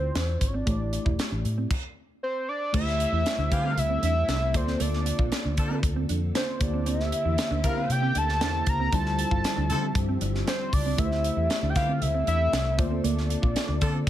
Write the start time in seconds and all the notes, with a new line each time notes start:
Already playing: C4 E4 F4 C5 D5
0.15 E2 D4, snare, closed hi-hat
0.28 muted clean electric guitar stroke
0.41 G#1, kick, closed hi-hat
0.48 C#5
0.54 C4 D5
0.65 A1 A3 E4 G4 C#5, kick, closed hi-hat
0.74 D5
0.93 muted clean electric guitar stroke, closed hi-hat
1.05 E1 E4, kick
1.19 snare, closed hi-hat
1.32 A1 D4
1.44 A2, muted clean electric guitar stroke, closed hi-hat
1.58 C4
1.71 kick, crash
2.23 C5
2.49 D5
2.72 D2 G3 A3 C4 E4 G4 A4 C5 E5, kick, crash
2.87 snare
3.00 muted clean electric guitar stroke, closed hi-hat
3.12 E2 E4
3.26 snare, closed hi-hat
3.38 D2 D4
3.51 D3 E3 C4 G4 F5, muted clean electric guitar stroke, kick, closed hi-hat
3.64 C4
3.77 D2 E5, muted clean electric guitar stroke, closed hi-hat
3.90 C4
4.03 E2 D4 E5, closed hi-hat
4.28 C2 D4, snare, closed hi-hat
4.42 muted clean electric guitar stroke
4.53 D2 D3 A#3 F4 A4 C5 D5, kick, closed hi-hat
4.67 C4, snare
4.80 D2 A#3 D5, closed hi-hat
4.93 snare
5.06 muted clean electric guitar stroke, closed hi-hat
5.19 A#1 F4, kick
5.32 snare, closed hi-hat
5.45 D2 D4
5.57 D3 F3 D4 A4, muted clean electric guitar stroke, kick, closed hi-hat
5.71 C4
5.83 D2, muted clean electric guitar stroke, kick, closed hi-hat
5.96 C4
6.09 F2 D4, closed hi-hat
6.35 D4 C5, snare, closed hi-hat
6.48 muted clean electric guitar stroke
6.59 D2 A#3 E4 G4 C5 D5 E5, kick, closed hi-hat
6.73 C4
6.86 C4 E5, closed hi-hat
7.00 snare
7.12 muted clean electric guitar stroke, closed hi-hat
7.25 E2 E4
7.38 snare, closed hi-hat
7.51 D2 D4
7.64 D3 G3 E4 A#4 F5, kick, closed hi-hat
7.77 C4
7.89 C3 G5, muted clean electric guitar stroke, closed hi-hat
8.02 C4
8.15 D2 D4 A5, closed hi-hat
8.29 snare
8.40 E2 A#3 D4 E4 G4 C5, snare, closed hi-hat
8.54 muted clean electric guitar stroke
8.66 C#2 A#5, kick, closed hi-hat
8.80 C4
8.92 D2 D3 F3 G3 C4 D4 E4 F4 G4 C5 A5, kick, closed hi-hat
9.06 snare
9.19 muted clean electric guitar stroke, closed hi-hat
9.31 G1 F4, kick
9.44 snare, closed hi-hat
9.57 D2 D4
9.70 D3 F3 E4 A4, muted clean electric guitar stroke, closed hi-hat
9.83 C4
9.95 G2, kick, closed hi-hat
10.09 C4
10.21 G1 D4, closed hi-hat
10.35 snare
10.47 D4 C5, snare, closed hi-hat
10.60 muted clean electric guitar stroke
10.73 C#2 D5, kick, open hi-hat
10.86 C4
10.97 D2 G3 A3 C4 E4 G4 A4 B4 E5, kick, closed hi-hat
11.05 C5
11.12 snare
11.24 muted clean electric guitar stroke, closed hi-hat
11.36 E2 E4
11.50 snare, closed hi-hat
11.62 D2 D4
11.70 G5
11.75 D3 E3 C4 G4 F5, muted clean electric guitar stroke, kick, snare, closed hi-hat
11.89 C4
12.02 D2 E5, muted clean electric guitar stroke, closed hi-hat
12.14 C4
12.27 E2 D4 E5, closed hi-hat
12.53 C2 D4, snare, closed hi-hat
12.65 muted clean electric guitar stroke
12.77 D2 D3 A#3 F4 A4 C5 D5, kick, closed hi-hat
12.91 C4
13.04 D2 A#3 D5, closed hi-hat
13.18 snare
13.30 muted clean electric guitar stroke, closed hi-hat
13.42 A#1 F4, kick
13.56 snare, closed hi-hat
13.68 D2 D4
13.81 D3 F3 D4 A4, muted clean electric guitar stroke, kick, closed hi-hat
13.94 C4